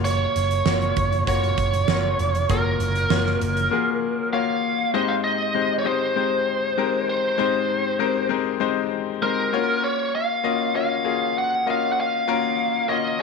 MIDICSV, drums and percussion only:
0, 0, Header, 1, 2, 480
1, 0, Start_track
1, 0, Key_signature, -4, "major"
1, 0, Tempo, 611933
1, 35, Time_signature, 4, 2, 24, 8
1, 10372, End_track
2, 0, Start_track
2, 0, Title_t, "Drums"
2, 37, Note_on_c, 9, 42, 83
2, 116, Note_off_c, 9, 42, 0
2, 281, Note_on_c, 9, 42, 57
2, 359, Note_off_c, 9, 42, 0
2, 398, Note_on_c, 9, 42, 48
2, 476, Note_off_c, 9, 42, 0
2, 515, Note_on_c, 9, 38, 100
2, 594, Note_off_c, 9, 38, 0
2, 640, Note_on_c, 9, 42, 30
2, 719, Note_off_c, 9, 42, 0
2, 757, Note_on_c, 9, 42, 66
2, 760, Note_on_c, 9, 36, 92
2, 836, Note_off_c, 9, 42, 0
2, 838, Note_off_c, 9, 36, 0
2, 881, Note_on_c, 9, 42, 45
2, 960, Note_off_c, 9, 42, 0
2, 999, Note_on_c, 9, 36, 92
2, 1003, Note_on_c, 9, 42, 84
2, 1077, Note_off_c, 9, 36, 0
2, 1082, Note_off_c, 9, 42, 0
2, 1124, Note_on_c, 9, 42, 34
2, 1203, Note_off_c, 9, 42, 0
2, 1237, Note_on_c, 9, 42, 64
2, 1238, Note_on_c, 9, 36, 89
2, 1315, Note_off_c, 9, 42, 0
2, 1316, Note_off_c, 9, 36, 0
2, 1361, Note_on_c, 9, 42, 54
2, 1439, Note_off_c, 9, 42, 0
2, 1475, Note_on_c, 9, 38, 107
2, 1554, Note_off_c, 9, 38, 0
2, 1720, Note_on_c, 9, 42, 57
2, 1798, Note_off_c, 9, 42, 0
2, 1841, Note_on_c, 9, 42, 45
2, 1919, Note_off_c, 9, 42, 0
2, 1956, Note_on_c, 9, 42, 82
2, 1958, Note_on_c, 9, 36, 107
2, 2035, Note_off_c, 9, 42, 0
2, 2036, Note_off_c, 9, 36, 0
2, 2197, Note_on_c, 9, 42, 57
2, 2276, Note_off_c, 9, 42, 0
2, 2316, Note_on_c, 9, 42, 43
2, 2395, Note_off_c, 9, 42, 0
2, 2435, Note_on_c, 9, 38, 112
2, 2513, Note_off_c, 9, 38, 0
2, 2558, Note_on_c, 9, 38, 31
2, 2636, Note_off_c, 9, 38, 0
2, 2679, Note_on_c, 9, 42, 68
2, 2757, Note_off_c, 9, 42, 0
2, 2798, Note_on_c, 9, 42, 45
2, 2877, Note_off_c, 9, 42, 0
2, 10372, End_track
0, 0, End_of_file